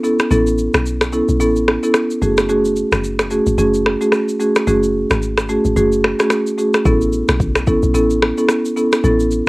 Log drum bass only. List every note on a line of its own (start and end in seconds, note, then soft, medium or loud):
0.31 0.69 A1 loud
0.74 1.22 B1 medium
1.29 1.42 B1 medium
1.40 1.78 A1 loud
2.22 2.83 F#1 loud
2.92 3.40 F#1 medium
3.47 3.57 G#1 medium
3.58 3.96 F#1 loud
4.67 5.05 F#1 loud
5.11 5.58 G#1 medium
5.65 5.75 G#1 medium
5.76 6.14 F#1 loud
6.85 7.23 A1 loud
7.29 7.76 B1 medium
7.83 7.96 B1 medium
7.95 8.32 A1 loud
9.04 9.41 A1 loud